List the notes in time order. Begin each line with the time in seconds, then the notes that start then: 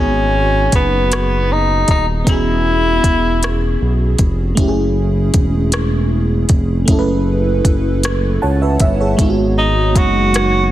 Already playing: G#1 B3 C#4 D#4
0.00 F#4 G#4
0.72 F#1 B3, kick, closed hi-hat
1.12 cross-stick, closed hi-hat
1.52 D#4
1.88 D#1 D#4, kick, closed hi-hat
2.24 E1 B3 C#4, kick, closed hi-hat
2.29 E4 F#4 G#4
3.04 E1, kick, closed hi-hat
3.43 cross-stick, closed hi-hat
3.81 B1
4.19 F1, kick, closed hi-hat
4.55 F#1 A3 C#4, kick, closed hi-hat
4.60 E4 G4
4.68 G#4
5.34 E1, kick, closed hi-hat
5.72 cross-stick, closed hi-hat
6.49 F1, kick, closed hi-hat
6.85 F#1 A3 C#4, kick, closed hi-hat
6.90 E4 A4
6.99 B4
7.65 F#1, kick, closed hi-hat
8.03 cross-stick, closed hi-hat
8.42 C#2 C#5 F#5 A5
8.62 B4 E5
8.80 G1 E5, kick, closed hi-hat
9.01 G#4 C#5
9.17 G#1 G#3 B3, kick, closed hi-hat
9.21 D#4 F4
9.30 F#4
9.58 D#4
9.96 F#1 F#4, kick, closed hi-hat
10.34 cross-stick, closed hi-hat